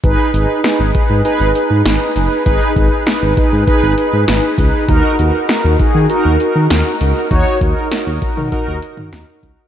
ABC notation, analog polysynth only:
X:1
M:4/4
L:1/8
Q:1/4=99
K:G#m
V:1 name="Analog polysynth"
[DGB] [DGB] [DGB] [DGB] [DGB] [DGB] [DGB] [DGB] | [DGB] [DGB] [DGB] [DG] [DGB] [DGB] [DGB] [DGB] | [DFA] [DFA] [DFA] [DFG] [DFA] [DFA] [DFA] [DFA] | [DFc] [DFA] [DFA] [DFA] [DFA] D [DFA] [DA] |]